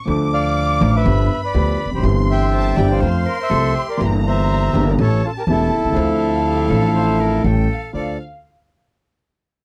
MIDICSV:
0, 0, Header, 1, 6, 480
1, 0, Start_track
1, 0, Key_signature, -1, "minor"
1, 0, Tempo, 492207
1, 70, Time_signature, 4, 2, 24, 8
1, 9402, End_track
2, 0, Start_track
2, 0, Title_t, "Violin section"
2, 0, Program_c, 0, 48
2, 68, Note_on_c, 0, 86, 109
2, 992, Note_off_c, 0, 86, 0
2, 1033, Note_on_c, 0, 83, 100
2, 1987, Note_on_c, 0, 84, 98
2, 1993, Note_off_c, 0, 83, 0
2, 2469, Note_off_c, 0, 84, 0
2, 2476, Note_on_c, 0, 81, 107
2, 2696, Note_off_c, 0, 81, 0
2, 2698, Note_on_c, 0, 79, 94
2, 2944, Note_off_c, 0, 79, 0
2, 2951, Note_on_c, 0, 84, 106
2, 3907, Note_off_c, 0, 84, 0
2, 3917, Note_on_c, 0, 82, 100
2, 4868, Note_off_c, 0, 82, 0
2, 4878, Note_on_c, 0, 81, 93
2, 5791, Note_off_c, 0, 81, 0
2, 5797, Note_on_c, 0, 77, 96
2, 7254, Note_off_c, 0, 77, 0
2, 7261, Note_on_c, 0, 79, 84
2, 7506, Note_off_c, 0, 79, 0
2, 7528, Note_on_c, 0, 77, 74
2, 7729, Note_off_c, 0, 77, 0
2, 7741, Note_on_c, 0, 77, 68
2, 7968, Note_off_c, 0, 77, 0
2, 9402, End_track
3, 0, Start_track
3, 0, Title_t, "Bandoneon"
3, 0, Program_c, 1, 23
3, 326, Note_on_c, 1, 74, 86
3, 329, Note_on_c, 1, 77, 97
3, 880, Note_off_c, 1, 74, 0
3, 938, Note_on_c, 1, 71, 83
3, 939, Note_off_c, 1, 77, 0
3, 941, Note_on_c, 1, 76, 100
3, 1373, Note_off_c, 1, 71, 0
3, 1375, Note_off_c, 1, 76, 0
3, 1401, Note_on_c, 1, 71, 75
3, 1420, Note_on_c, 1, 74, 89
3, 1843, Note_off_c, 1, 71, 0
3, 1853, Note_off_c, 1, 74, 0
3, 1897, Note_on_c, 1, 67, 72
3, 1909, Note_on_c, 1, 72, 88
3, 2000, Note_off_c, 1, 67, 0
3, 2009, Note_off_c, 1, 72, 0
3, 2243, Note_on_c, 1, 76, 84
3, 2263, Note_on_c, 1, 79, 112
3, 2797, Note_off_c, 1, 76, 0
3, 2842, Note_on_c, 1, 72, 83
3, 2861, Note_on_c, 1, 77, 102
3, 2863, Note_off_c, 1, 79, 0
3, 3282, Note_off_c, 1, 72, 0
3, 3292, Note_off_c, 1, 77, 0
3, 3320, Note_on_c, 1, 72, 88
3, 3344, Note_on_c, 1, 76, 103
3, 3760, Note_off_c, 1, 72, 0
3, 3773, Note_off_c, 1, 76, 0
3, 3795, Note_on_c, 1, 70, 66
3, 3812, Note_on_c, 1, 74, 90
3, 3901, Note_off_c, 1, 70, 0
3, 3914, Note_off_c, 1, 74, 0
3, 4166, Note_on_c, 1, 72, 85
3, 4182, Note_on_c, 1, 76, 107
3, 4714, Note_off_c, 1, 72, 0
3, 4758, Note_on_c, 1, 70, 67
3, 4778, Note_off_c, 1, 76, 0
3, 4780, Note_on_c, 1, 74, 80
3, 4808, Note_off_c, 1, 70, 0
3, 4826, Note_off_c, 1, 74, 0
3, 4882, Note_on_c, 1, 69, 82
3, 4901, Note_on_c, 1, 73, 108
3, 5096, Note_off_c, 1, 69, 0
3, 5123, Note_on_c, 1, 65, 65
3, 5128, Note_off_c, 1, 73, 0
3, 5140, Note_on_c, 1, 69, 75
3, 5172, Note_off_c, 1, 65, 0
3, 5186, Note_off_c, 1, 69, 0
3, 5242, Note_on_c, 1, 67, 67
3, 5261, Note_on_c, 1, 70, 83
3, 5292, Note_off_c, 1, 67, 0
3, 5306, Note_off_c, 1, 70, 0
3, 5366, Note_on_c, 1, 64, 75
3, 5378, Note_on_c, 1, 69, 100
3, 7239, Note_off_c, 1, 64, 0
3, 7245, Note_off_c, 1, 69, 0
3, 7745, Note_on_c, 1, 74, 90
3, 7971, Note_off_c, 1, 74, 0
3, 9402, End_track
4, 0, Start_track
4, 0, Title_t, "Flute"
4, 0, Program_c, 2, 73
4, 2458, Note_on_c, 2, 72, 98
4, 2693, Note_on_c, 2, 74, 108
4, 2707, Note_off_c, 2, 72, 0
4, 2931, Note_on_c, 2, 72, 102
4, 2945, Note_off_c, 2, 74, 0
4, 3178, Note_on_c, 2, 70, 97
4, 3193, Note_off_c, 2, 72, 0
4, 3415, Note_on_c, 2, 69, 106
4, 3430, Note_off_c, 2, 70, 0
4, 3655, Note_on_c, 2, 67, 91
4, 3669, Note_off_c, 2, 69, 0
4, 4020, Note_off_c, 2, 67, 0
4, 6292, Note_on_c, 2, 67, 84
4, 6526, Note_on_c, 2, 69, 94
4, 6541, Note_off_c, 2, 67, 0
4, 6757, Note_off_c, 2, 69, 0
4, 6763, Note_on_c, 2, 72, 104
4, 7021, Note_on_c, 2, 70, 90
4, 7036, Note_off_c, 2, 72, 0
4, 7258, Note_on_c, 2, 69, 96
4, 7273, Note_off_c, 2, 70, 0
4, 7746, Note_off_c, 2, 69, 0
4, 7752, Note_on_c, 2, 69, 73
4, 7975, Note_off_c, 2, 69, 0
4, 9402, End_track
5, 0, Start_track
5, 0, Title_t, "Grand piano"
5, 0, Program_c, 3, 0
5, 53, Note_on_c, 3, 53, 80
5, 63, Note_on_c, 3, 57, 75
5, 71, Note_on_c, 3, 38, 97
5, 73, Note_on_c, 3, 50, 100
5, 80, Note_on_c, 3, 62, 75
5, 94, Note_on_c, 3, 69, 86
5, 747, Note_off_c, 3, 53, 0
5, 752, Note_off_c, 3, 57, 0
5, 756, Note_off_c, 3, 38, 0
5, 757, Note_off_c, 3, 50, 0
5, 760, Note_off_c, 3, 62, 0
5, 767, Note_off_c, 3, 69, 0
5, 787, Note_on_c, 3, 33, 95
5, 787, Note_on_c, 3, 53, 79
5, 787, Note_on_c, 3, 57, 72
5, 787, Note_on_c, 3, 62, 76
5, 788, Note_on_c, 3, 69, 88
5, 790, Note_on_c, 3, 45, 95
5, 991, Note_off_c, 3, 33, 0
5, 991, Note_off_c, 3, 53, 0
5, 991, Note_off_c, 3, 57, 0
5, 991, Note_off_c, 3, 62, 0
5, 991, Note_off_c, 3, 69, 0
5, 993, Note_off_c, 3, 45, 0
5, 1021, Note_on_c, 3, 53, 78
5, 1023, Note_on_c, 3, 59, 73
5, 1025, Note_on_c, 3, 31, 94
5, 1025, Note_on_c, 3, 43, 88
5, 1026, Note_on_c, 3, 62, 73
5, 1030, Note_on_c, 3, 67, 81
5, 1228, Note_off_c, 3, 53, 0
5, 1230, Note_off_c, 3, 31, 0
5, 1230, Note_off_c, 3, 59, 0
5, 1231, Note_off_c, 3, 43, 0
5, 1231, Note_off_c, 3, 62, 0
5, 1233, Note_off_c, 3, 67, 0
5, 1502, Note_on_c, 3, 62, 62
5, 1503, Note_on_c, 3, 38, 89
5, 1504, Note_on_c, 3, 50, 88
5, 1504, Note_on_c, 3, 53, 72
5, 1505, Note_on_c, 3, 59, 65
5, 1505, Note_on_c, 3, 67, 83
5, 1709, Note_off_c, 3, 38, 0
5, 1709, Note_off_c, 3, 62, 0
5, 1710, Note_off_c, 3, 50, 0
5, 1710, Note_off_c, 3, 53, 0
5, 1710, Note_off_c, 3, 59, 0
5, 1710, Note_off_c, 3, 67, 0
5, 1811, Note_on_c, 3, 40, 50
5, 1863, Note_on_c, 3, 41, 60
5, 1872, Note_off_c, 3, 40, 0
5, 1923, Note_on_c, 3, 42, 76
5, 1928, Note_off_c, 3, 41, 0
5, 1969, Note_on_c, 3, 52, 78
5, 1978, Note_on_c, 3, 55, 77
5, 1982, Note_on_c, 3, 43, 90
5, 1987, Note_off_c, 3, 42, 0
5, 1988, Note_on_c, 3, 31, 98
5, 1990, Note_on_c, 3, 60, 71
5, 2002, Note_on_c, 3, 67, 94
5, 2663, Note_off_c, 3, 52, 0
5, 2668, Note_off_c, 3, 55, 0
5, 2670, Note_off_c, 3, 43, 0
5, 2673, Note_off_c, 3, 31, 0
5, 2674, Note_off_c, 3, 60, 0
5, 2680, Note_off_c, 3, 67, 0
5, 2701, Note_on_c, 3, 52, 84
5, 2704, Note_on_c, 3, 31, 105
5, 2707, Note_on_c, 3, 55, 73
5, 2707, Note_on_c, 3, 67, 94
5, 2709, Note_on_c, 3, 43, 104
5, 2709, Note_on_c, 3, 60, 76
5, 2907, Note_off_c, 3, 52, 0
5, 2908, Note_off_c, 3, 31, 0
5, 2910, Note_off_c, 3, 55, 0
5, 2910, Note_off_c, 3, 67, 0
5, 2911, Note_off_c, 3, 43, 0
5, 2911, Note_off_c, 3, 60, 0
5, 2941, Note_on_c, 3, 53, 88
5, 2942, Note_on_c, 3, 57, 76
5, 2946, Note_on_c, 3, 41, 88
5, 2947, Note_on_c, 3, 60, 73
5, 2947, Note_on_c, 3, 69, 82
5, 3147, Note_off_c, 3, 57, 0
5, 3149, Note_off_c, 3, 41, 0
5, 3149, Note_off_c, 3, 53, 0
5, 3150, Note_off_c, 3, 60, 0
5, 3150, Note_off_c, 3, 69, 0
5, 3409, Note_on_c, 3, 53, 77
5, 3410, Note_on_c, 3, 36, 89
5, 3410, Note_on_c, 3, 60, 68
5, 3412, Note_on_c, 3, 48, 96
5, 3413, Note_on_c, 3, 57, 63
5, 3414, Note_on_c, 3, 69, 90
5, 3620, Note_off_c, 3, 53, 0
5, 3620, Note_off_c, 3, 60, 0
5, 3621, Note_off_c, 3, 36, 0
5, 3621, Note_off_c, 3, 48, 0
5, 3622, Note_off_c, 3, 57, 0
5, 3622, Note_off_c, 3, 69, 0
5, 3876, Note_on_c, 3, 52, 87
5, 3890, Note_on_c, 3, 58, 79
5, 3897, Note_on_c, 3, 31, 94
5, 3897, Note_on_c, 3, 43, 106
5, 3899, Note_on_c, 3, 62, 81
5, 3918, Note_on_c, 3, 67, 88
5, 4572, Note_off_c, 3, 52, 0
5, 4579, Note_off_c, 3, 58, 0
5, 4582, Note_off_c, 3, 43, 0
5, 4583, Note_off_c, 3, 31, 0
5, 4584, Note_off_c, 3, 62, 0
5, 4593, Note_off_c, 3, 67, 0
5, 4610, Note_on_c, 3, 52, 82
5, 4611, Note_on_c, 3, 43, 94
5, 4614, Note_on_c, 3, 31, 107
5, 4616, Note_on_c, 3, 58, 76
5, 4618, Note_on_c, 3, 62, 82
5, 4618, Note_on_c, 3, 67, 96
5, 4818, Note_off_c, 3, 43, 0
5, 4818, Note_off_c, 3, 52, 0
5, 4820, Note_off_c, 3, 31, 0
5, 4821, Note_off_c, 3, 58, 0
5, 4822, Note_off_c, 3, 62, 0
5, 4822, Note_off_c, 3, 67, 0
5, 4861, Note_on_c, 3, 52, 79
5, 4861, Note_on_c, 3, 61, 72
5, 4863, Note_on_c, 3, 33, 94
5, 4863, Note_on_c, 3, 45, 93
5, 4863, Note_on_c, 3, 57, 75
5, 4868, Note_on_c, 3, 67, 87
5, 5063, Note_off_c, 3, 52, 0
5, 5064, Note_off_c, 3, 33, 0
5, 5064, Note_off_c, 3, 45, 0
5, 5064, Note_off_c, 3, 61, 0
5, 5065, Note_off_c, 3, 57, 0
5, 5067, Note_off_c, 3, 67, 0
5, 5334, Note_on_c, 3, 52, 74
5, 5336, Note_on_c, 3, 28, 95
5, 5337, Note_on_c, 3, 40, 90
5, 5337, Note_on_c, 3, 57, 63
5, 5340, Note_on_c, 3, 61, 67
5, 5343, Note_on_c, 3, 67, 83
5, 5539, Note_off_c, 3, 52, 0
5, 5541, Note_off_c, 3, 28, 0
5, 5541, Note_off_c, 3, 40, 0
5, 5541, Note_off_c, 3, 57, 0
5, 5542, Note_off_c, 3, 61, 0
5, 5544, Note_off_c, 3, 67, 0
5, 5639, Note_on_c, 3, 35, 48
5, 5693, Note_on_c, 3, 36, 62
5, 5701, Note_off_c, 3, 35, 0
5, 5750, Note_on_c, 3, 37, 71
5, 5757, Note_off_c, 3, 36, 0
5, 5775, Note_on_c, 3, 53, 82
5, 5789, Note_on_c, 3, 60, 79
5, 5797, Note_on_c, 3, 50, 98
5, 5798, Note_on_c, 3, 38, 100
5, 5801, Note_on_c, 3, 62, 78
5, 5816, Note_off_c, 3, 37, 0
5, 5818, Note_on_c, 3, 69, 97
5, 6483, Note_off_c, 3, 53, 0
5, 6490, Note_off_c, 3, 60, 0
5, 6494, Note_off_c, 3, 38, 0
5, 6494, Note_off_c, 3, 50, 0
5, 6496, Note_off_c, 3, 62, 0
5, 6504, Note_off_c, 3, 69, 0
5, 6508, Note_on_c, 3, 53, 84
5, 6522, Note_on_c, 3, 60, 79
5, 6529, Note_on_c, 3, 45, 94
5, 6533, Note_on_c, 3, 33, 90
5, 6535, Note_on_c, 3, 62, 74
5, 6546, Note_on_c, 3, 69, 92
5, 7213, Note_off_c, 3, 53, 0
5, 7220, Note_off_c, 3, 60, 0
5, 7223, Note_off_c, 3, 45, 0
5, 7225, Note_off_c, 3, 33, 0
5, 7226, Note_off_c, 3, 62, 0
5, 7232, Note_off_c, 3, 69, 0
5, 7255, Note_on_c, 3, 61, 67
5, 7256, Note_on_c, 3, 55, 69
5, 7257, Note_on_c, 3, 45, 85
5, 7257, Note_on_c, 3, 64, 67
5, 7258, Note_on_c, 3, 33, 83
5, 7258, Note_on_c, 3, 69, 82
5, 7464, Note_off_c, 3, 55, 0
5, 7464, Note_off_c, 3, 61, 0
5, 7465, Note_off_c, 3, 45, 0
5, 7465, Note_off_c, 3, 64, 0
5, 7466, Note_off_c, 3, 33, 0
5, 7466, Note_off_c, 3, 69, 0
5, 7733, Note_on_c, 3, 72, 65
5, 7735, Note_on_c, 3, 62, 52
5, 7735, Note_on_c, 3, 65, 53
5, 7739, Note_on_c, 3, 38, 57
5, 7942, Note_off_c, 3, 72, 0
5, 7943, Note_off_c, 3, 62, 0
5, 7943, Note_off_c, 3, 65, 0
5, 7945, Note_off_c, 3, 38, 0
5, 9402, End_track
6, 0, Start_track
6, 0, Title_t, "Upright bass"
6, 0, Program_c, 4, 32
6, 73, Note_on_c, 4, 38, 94
6, 756, Note_off_c, 4, 38, 0
6, 791, Note_on_c, 4, 33, 107
6, 993, Note_off_c, 4, 33, 0
6, 1029, Note_on_c, 4, 31, 111
6, 1233, Note_off_c, 4, 31, 0
6, 1505, Note_on_c, 4, 38, 102
6, 1710, Note_off_c, 4, 38, 0
6, 1812, Note_on_c, 4, 28, 59
6, 1868, Note_off_c, 4, 28, 0
6, 1874, Note_on_c, 4, 29, 61
6, 1924, Note_off_c, 4, 29, 0
6, 1930, Note_on_c, 4, 30, 70
6, 1977, Note_off_c, 4, 30, 0
6, 1982, Note_on_c, 4, 31, 103
6, 2670, Note_off_c, 4, 31, 0
6, 2712, Note_on_c, 4, 31, 100
6, 2912, Note_off_c, 4, 31, 0
6, 2950, Note_on_c, 4, 41, 102
6, 3151, Note_off_c, 4, 41, 0
6, 3424, Note_on_c, 4, 36, 104
6, 3627, Note_off_c, 4, 36, 0
6, 3908, Note_on_c, 4, 31, 105
6, 4588, Note_off_c, 4, 31, 0
6, 4628, Note_on_c, 4, 31, 104
6, 4827, Note_off_c, 4, 31, 0
6, 4861, Note_on_c, 4, 33, 109
6, 5063, Note_off_c, 4, 33, 0
6, 5334, Note_on_c, 4, 28, 95
6, 5539, Note_off_c, 4, 28, 0
6, 5635, Note_on_c, 4, 35, 56
6, 5692, Note_off_c, 4, 35, 0
6, 5698, Note_on_c, 4, 36, 58
6, 5754, Note_off_c, 4, 36, 0
6, 5760, Note_on_c, 4, 37, 72
6, 5809, Note_off_c, 4, 37, 0
6, 5815, Note_on_c, 4, 38, 102
6, 6503, Note_off_c, 4, 38, 0
6, 6534, Note_on_c, 4, 33, 105
6, 7226, Note_off_c, 4, 33, 0
6, 7259, Note_on_c, 4, 33, 96
6, 7466, Note_off_c, 4, 33, 0
6, 7741, Note_on_c, 4, 38, 53
6, 7946, Note_off_c, 4, 38, 0
6, 9402, End_track
0, 0, End_of_file